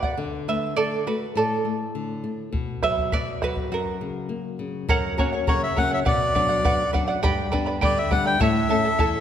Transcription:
0.00 0.14 B2 medium
0.00 0.18 F#5 medium
0.00 bombo low medium
0.04 0.18 D5 medium
0.17 0.76 D3 medium
0.48 0.76 A3 soft
0.48 0.76 B4 medium
0.48 0.78 E5 medium
0.76 1.06 D3 soft
0.76 1.05 A4 medium
0.76 1.07 D5 medium
1.07 1.35 A3 soft
1.07 1.34 F#4 medium
1.07 1.37 B4 medium
1.35 2.50 A2 medium
1.35 2.21 A4 medium
1.35 2.21 D5 soft
1.65 1.94 A3 soft
1.95 2.24 D3 medium
2.24 2.53 A3 soft
2.52 3.13 B2 medium
2.52 bombo low medium
2.83 3.12 F#3 soft
2.83 3.10 B4 medium
2.83 3.14 E5 medium
2.83 bombo rim soft
2.83 bombo low soft
2.98 bombo low soft
3.12 3.42 B2 soft
3.12 3.40 B4 medium
3.12 3.43 D5 medium
3.12 bombo low medium
3.42 3.71 F#3 soft
3.42 3.70 F#4 medium
3.42 3.73 B4 medium
3.42 bombo rim soft
3.42 bombo low soft
3.56 bombo low soft
3.72 4.86 F#2 medium
3.72 4.56 F#4 medium
3.72 4.57 A#4 medium
4.01 4.30 C#3 soft
4.29 4.58 A#3 soft
4.59 4.88 C#3 soft
4.89 5.46 F#2 medium
4.89 5.17 A#4 medium
4.89 5.18 C#5 medium
4.89 5.18 F#5 loud
4.89 bombo low medium
5.18 5.65 F#3 medium
5.18 5.65 A#3 soft
5.18 5.66 C#4 medium
5.18 5.33 A#4 medium
5.18 5.33 C#5 medium
5.18 5.31 F#5 medium
5.18 bombo low medium
5.33 5.48 C#5 soft
5.33 5.48 F#5 medium
5.47 6.04 C#3 medium
5.47 5.75 A#4 medium
5.47 5.62 C#5 medium
5.47 5.76 C#5 medium
5.47 5.77 F#5 medium
5.47 bombo low medium
5.63 5.78 E5 medium
5.76 6.01 F#3 medium
5.76 6.01 A#3 soft
5.76 6.01 C#4 medium
5.76 5.92 A#4 medium
5.76 5.91 C#5 medium
5.76 5.91 F#5 loud
5.76 5.90 F#5 medium
5.76 bombo low medium
5.91 6.07 C#5 medium
5.91 6.00 E5 loud
5.91 6.05 F#5 medium
6.05 6.63 B2 medium
6.05 6.34 B4 medium
6.05 6.34 D5 medium
6.05 6.91 D5 medium
6.05 6.34 F#5 medium
6.05 bombo low medium
6.35 6.83 F#3 medium
6.35 6.82 B3 soft
6.35 6.83 D4 medium
6.35 6.50 B4 medium
6.35 6.49 D5 medium
6.35 6.48 F#5 medium
6.35 bombo low medium
6.49 6.63 D5 soft
6.49 6.64 F#5 medium
6.64 7.22 F#2 medium
6.64 6.92 B4 medium
6.64 6.92 D5 medium
6.64 6.93 F#5 medium
6.64 bombo low medium
6.93 7.17 F#3 medium
6.93 7.18 B3 soft
6.93 7.18 D4 medium
6.93 7.08 B4 medium
6.93 7.07 D5 medium
6.93 7.06 F#5 medium
6.93 bombo low medium
7.08 7.22 D5 medium
7.08 7.23 F#5 medium
7.23 7.81 G2 medium
7.23 7.53 G4 medium
7.23 7.51 B4 medium
7.23 7.51 D5 medium
7.23 7.50 G5 medium
7.23 7.52 B5 loud
7.23 bombo low medium
7.52 8.00 G3 medium
7.52 8.00 B3 soft
7.52 8.00 D4 medium
7.52 7.67 B4 medium
7.52 7.66 D5 medium
7.52 7.67 G5 medium
7.52 7.65 B5 medium
7.52 bombo low medium
7.66 7.81 B4 soft
7.66 7.81 D5 medium
7.66 7.81 B5 medium
7.81 8.39 D3 medium
7.81 8.11 G4 medium
7.81 8.10 B4 medium
7.81 8.10 D5 medium
7.81 7.98 D5 medium
7.81 8.09 G5 medium
7.81 8.11 B5 medium
7.81 bombo low medium
7.98 8.11 E5 medium
8.11 8.35 G3 medium
8.11 8.35 B3 soft
8.11 8.36 D4 medium
8.11 8.26 B4 medium
8.11 8.25 D5 medium
8.11 8.25 F#5 loud
8.11 8.26 G5 medium
8.11 8.24 B5 medium
8.11 bombo low medium
8.26 8.41 B4 soft
8.26 8.40 D5 medium
8.26 8.40 G5 loud
8.26 8.41 B5 medium
8.40 8.97 A2 medium
8.40 8.69 E4 medium
8.40 8.69 A4 medium
8.40 8.70 C#5 medium
8.40 8.68 E5 medium
8.40 9.20 E5 loud
8.40 8.69 A5 medium
8.40 bombo low medium
8.69 9.16 A3 medium
8.69 9.17 C#4 soft
8.69 8.85 E4 medium
8.69 9.17 E4 medium
8.69 8.85 A4 medium
8.69 8.84 E5 medium
8.69 8.84 A5 medium
8.85 8.98 E4 soft
8.85 8.98 A4 medium
8.85 8.99 A5 medium
8.98 9.20 E2 medium
8.98 9.20 E4 medium
8.98 9.20 A4 medium
8.98 9.20 C#5 medium
8.98 9.20 E5 medium
8.98 9.20 A5 medium
8.98 bombo low medium

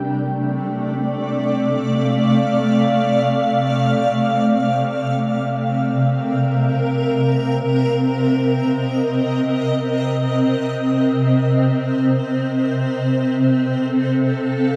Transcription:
0.00 14.76 C3 medium
0.00 5.40 A3 medium
0.00 0.20 D4 medium
0.00 0.39 G5 medium
0.09 5.39 D5 medium
1.19 7.02 F5 medium
5.74 12.07 A#4 medium
6.49 14.76 C4 medium
8.12 12.06 D#5 medium
13.32 14.76 A4 medium
14.14 14.76 F5 medium

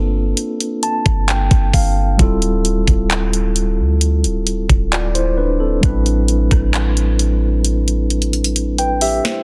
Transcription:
0.00 0.34 G1 loud
0.00 2.15 A#3 medium
0.00 2.15 C4 medium
0.00 2.16 D4 medium
0.00 2.16 F4 medium
0.00 2.20 A4 medium
0.00 2.21 B4 medium
0.37 closed hi-hat medium
0.60 closed hi-hat medium
0.83 1.25 A5 medium
0.83 closed hi-hat medium
1.06 1.50 G1 loud
1.06 kick loud
1.06 closed hi-hat soft
1.28 1.71 G5 medium
1.28 clap loud
1.28 closed hi-hat medium
1.51 1.73 G1 loud
1.51 kick medium
1.51 closed hi-hat medium
1.74 2.18 G1 loud
1.74 2.16 F5 medium
1.74 kick medium
1.74 open hi-hat medium
2.17 2.85 D1 loud
2.17 5.78 G3 medium
2.17 4.88 C4 medium
2.17 4.88 E4 medium
2.17 4.89 F4 medium
2.17 kick loud
2.17 closed hi-hat medium
2.22 4.89 A4 medium
2.42 closed hi-hat medium
2.65 closed hi-hat medium
2.87 3.81 D1 loud
2.87 kick medium
2.87 closed hi-hat medium
3.11 clap loud
3.11 closed hi-hat medium
3.33 closed hi-hat medium
3.56 closed hi-hat medium
3.79 4.26 D2 loud
4.01 closed hi-hat medium
4.24 4.68 D1 loud
4.24 closed hi-hat medium
4.47 closed hi-hat medium
4.70 5.79 D1 loud
4.70 kick loud
4.70 closed hi-hat soft
4.92 5.14 F4 medium
4.92 5.14 D5 medium
4.92 clap loud
4.92 closed hi-hat medium
5.15 5.37 E4 medium
5.15 5.37 C5 medium
5.15 closed hi-hat medium
5.38 5.60 D4 medium
5.38 5.59 B4 medium
5.60 5.87 C4 medium
5.60 6.03 A4 medium
5.81 6.49 A1 loud
5.81 8.51 G3 medium
5.81 5.89 B3 medium
5.81 8.52 D4 medium
5.81 8.07 E4 medium
5.81 kick loud
5.81 closed hi-hat medium
5.85 8.54 C4 medium
5.85 8.07 B4 medium
6.06 closed hi-hat medium
6.28 closed hi-hat medium
6.51 9.20 A1 loud
6.51 kick medium
6.51 cross-stick medium
6.51 closed hi-hat medium
6.74 clap loud
6.74 closed hi-hat medium
6.97 closed hi-hat medium
7.19 closed hi-hat medium
7.65 closed hi-hat medium
7.88 closed hi-hat medium
8.10 closed hi-hat soft
8.22 closed hi-hat medium
8.33 closed hi-hat medium
8.44 closed hi-hat medium
8.56 closed hi-hat medium
8.78 9.01 B4 medium
8.78 9.00 G5 medium
8.78 closed hi-hat medium
9.01 9.23 G4 medium
9.01 9.23 E5 medium
9.01 open hi-hat medium
9.25 9.43 E4 medium
9.25 snare loud

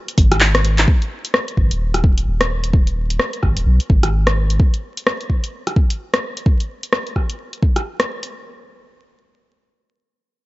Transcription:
0.08 closed hi-hat soft
0.18 0.86 G#1 medium
0.18 kick loud
0.18 open hi-hat medium
0.32 cross-stick medium
0.32 closed hi-hat medium
0.40 clap loud
0.55 cross-stick loud
0.55 closed hi-hat soft
0.65 open hi-hat medium
0.78 clap medium
0.78 closed hi-hat medium
0.88 kick loud
1.02 closed hi-hat soft
1.25 closed hi-hat medium
1.34 cross-stick loud
1.48 closed hi-hat soft
1.57 1.70 G#1 loud
1.57 kick medium
1.71 2.26 D#1 medium
1.71 closed hi-hat medium
1.94 cross-stick soft
1.94 closed hi-hat soft
2.04 kick loud
2.18 closed hi-hat medium
2.27 3.19 D#1 medium
2.41 cross-stick loud
2.41 closed hi-hat soft
2.64 closed hi-hat medium
2.73 kick loud
2.87 closed hi-hat soft
3.10 closed hi-hat medium
3.20 cross-stick loud
3.33 closed hi-hat soft
3.43 3.56 G#1 loud
3.43 kick medium
3.43 cross-stick soft
3.57 3.65 D#1 medium
3.57 closed hi-hat medium
3.66 3.79 B1 medium
3.80 closed hi-hat soft
3.90 4.58 G#1 medium
3.90 kick loud
4.03 cross-stick medium
4.03 closed hi-hat medium
4.27 cross-stick loud
4.27 closed hi-hat soft
4.50 closed hi-hat medium
4.60 kick loud
4.74 closed hi-hat soft
4.97 closed hi-hat medium
5.07 cross-stick loud
5.21 closed hi-hat soft
5.30 kick medium
5.44 closed hi-hat medium
5.67 cross-stick soft
5.67 closed hi-hat soft
5.76 kick loud
5.90 closed hi-hat medium
6.14 cross-stick loud
6.14 closed hi-hat soft
6.37 closed hi-hat medium
6.46 kick loud
6.60 closed hi-hat soft
6.83 closed hi-hat medium
6.93 cross-stick loud
7.07 closed hi-hat soft
7.16 kick medium
7.16 cross-stick soft
7.30 closed hi-hat soft
7.53 closed hi-hat soft
7.62 kick medium
7.76 cross-stick medium
7.76 closed hi-hat soft
8.00 cross-stick loud
8.00 closed hi-hat soft
8.23 closed hi-hat soft

